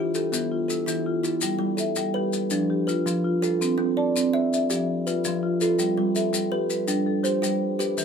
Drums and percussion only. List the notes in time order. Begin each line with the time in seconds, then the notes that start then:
0.15 maracas
0.33 maracas
0.70 maracas
0.88 maracas
1.24 maracas
1.41 maracas
1.78 maracas
1.96 maracas
2.33 maracas
2.50 maracas
2.88 maracas
3.07 maracas
3.43 maracas
3.62 maracas
4.16 maracas
4.53 maracas
4.70 maracas
5.07 maracas
5.25 maracas
5.61 maracas
5.79 maracas
6.16 maracas
6.34 maracas
6.70 maracas
6.88 maracas
7.25 maracas
7.44 maracas
7.80 maracas
7.98 maracas